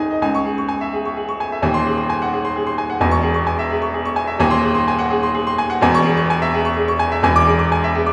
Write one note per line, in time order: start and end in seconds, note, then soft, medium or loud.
0.00 0.18 C2 medium
0.00 0.24 D#4 medium
0.00 0.24 G#4 medium
0.00 0.11 D#5 medium
0.00 0.22 G#5 medium
0.00 0.25 D#6 medium
0.11 0.22 D#5 medium
0.22 1.59 C#2 medium
0.22 0.41 G#5 medium
0.35 0.53 C#6 medium
0.45 0.64 G#4 medium
0.58 0.76 C#6 medium
0.68 0.88 G#5 medium
0.81 1.00 E5 medium
0.93 1.12 G#4 medium
1.05 1.24 C#6 medium
1.16 1.35 G#4 medium
1.29 1.47 C#6 medium
1.40 1.58 G#5 medium
1.52 1.63 E5 medium
1.62 2.96 D#1 medium
1.62 2.96 D#2 medium
1.62 1.81 G#5 medium
1.74 1.92 C6 medium
1.86 2.04 G#4 medium
1.98 2.16 C6 medium
2.10 2.27 G#5 medium
2.22 2.39 F#5 medium
2.33 2.51 G#4 medium
2.45 2.62 C6 medium
2.56 2.73 G#4 medium
2.67 2.85 C6 medium
2.78 2.96 G#5 medium
2.90 3.01 F#5 medium
3.00 4.36 E1 medium
3.00 4.36 E2 medium
3.00 3.19 G#5 medium
3.11 3.30 C#6 medium
3.23 3.41 G#4 medium
3.34 3.53 C#6 medium
3.47 3.65 G#5 medium
3.59 3.77 E5 medium
3.70 3.89 G#4 medium
3.82 4.00 C#6 medium
3.94 4.12 G#4 medium
4.05 4.24 C#6 medium
4.16 4.35 G#5 medium
4.27 4.40 E5 medium
4.39 5.77 D#1 medium
4.39 5.77 D#2 medium
4.39 4.59 G#5 medium
4.51 4.70 C6 medium
4.63 4.82 G#4 medium
4.74 4.94 C6 medium
4.88 5.06 G#5 medium
4.99 5.18 F#5 medium
5.10 5.29 G#4 medium
5.23 5.42 C6 medium
5.34 5.53 G#4 medium
5.47 5.65 C6 medium
5.58 5.77 G#5 medium
5.70 5.82 F#5 medium
5.81 7.19 E1 medium
5.81 7.20 E2 medium
5.81 6.01 G#5 medium
5.94 6.13 C#6 loud
6.05 6.24 G#4 medium
6.17 6.36 C#6 medium
6.30 6.48 G#5 medium
6.42 6.60 E5 medium
6.54 6.72 G#4 medium
6.65 6.83 C#6 medium
6.77 6.95 G#4 medium
6.88 7.07 C#6 medium
6.99 7.19 G#5 medium
7.12 7.23 E5 medium
7.23 8.13 E1 medium
7.23 8.13 E2 medium
7.23 7.42 G#5 medium
7.36 7.54 D6 loud
7.47 7.66 G#4 medium
7.59 7.78 D6 medium
7.72 7.91 G#5 medium
7.84 8.03 E5 medium
7.95 8.13 G#4 medium
8.06 8.13 D6 medium